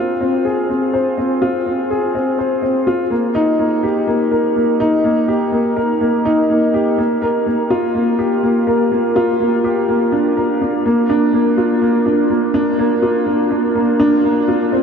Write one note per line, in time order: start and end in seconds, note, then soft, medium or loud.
0.00 0.21 C4 medium
0.00 0.10 F4 medium
0.00 0.94 C5 medium
0.21 0.44 C4 medium
0.45 0.68 G#4 medium
0.69 0.92 C4 medium
0.94 1.16 C5 medium
1.18 1.40 C4 medium
1.42 1.55 F4 medium
1.66 1.89 C4 medium
1.90 2.13 G#4 medium
2.15 2.37 C4 medium
2.39 2.61 C5 medium
2.62 2.85 C4 medium
2.87 3.01 F4 medium
3.10 3.34 A#3 medium
3.35 3.49 D#4 medium
3.59 3.82 A#3 medium
3.83 4.06 G4 medium
4.07 4.30 A#3 medium
4.31 4.55 A#4 medium
4.56 4.79 A#3 medium
4.80 4.94 D#4 medium
5.04 5.27 A#3 medium
5.28 5.51 G4 medium
5.52 5.75 A#3 medium
5.76 6.00 A#4 medium
6.01 6.24 A#3 medium
6.25 6.39 D#4 medium
6.50 6.73 A#3 medium
6.74 6.97 G4 medium
6.98 7.21 A#3 medium
7.22 7.45 A#4 medium
7.46 7.69 A#3 medium
7.70 7.84 F4 medium
7.95 8.18 A#3 medium
8.19 8.42 G4 medium
8.43 8.66 A#3 medium
8.67 8.90 A#4 medium
8.92 9.15 A#3 medium
9.16 9.30 F4 loud
9.40 9.63 A#3 medium
9.64 9.87 G4 medium
9.89 10.11 A#3 medium
10.12 10.35 D4 medium
10.37 10.60 A#4 medium
10.62 10.84 D4 medium
10.86 11.08 A#3 medium
11.10 11.23 D4 loud
11.33 11.56 A#3 medium
11.58 11.81 F4 medium
11.82 12.05 A#3 medium
12.06 12.29 D4 medium
12.30 12.53 A#3 medium
12.54 12.68 D4 loud
12.79 13.02 A#3 medium
13.02 13.26 F4 medium
13.27 13.50 A#3 medium
13.51 13.74 D4 medium
13.75 13.98 A#3 medium
14.00 14.13 D4 loud
14.24 14.47 A#3 medium
14.48 14.71 F4 medium
14.72 14.83 C4 medium